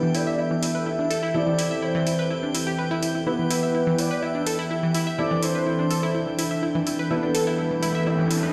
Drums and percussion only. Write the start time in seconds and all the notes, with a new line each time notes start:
0.15 open hi-hat
0.63 open hi-hat
1.11 open hi-hat
1.59 open hi-hat
2.07 open hi-hat
2.55 open hi-hat
3.03 open hi-hat
3.51 open hi-hat
3.99 open hi-hat
4.47 open hi-hat
4.95 open hi-hat
5.43 open hi-hat
5.91 open hi-hat
6.39 open hi-hat
6.87 open hi-hat
7.35 open hi-hat
7.83 open hi-hat
8.31 open hi-hat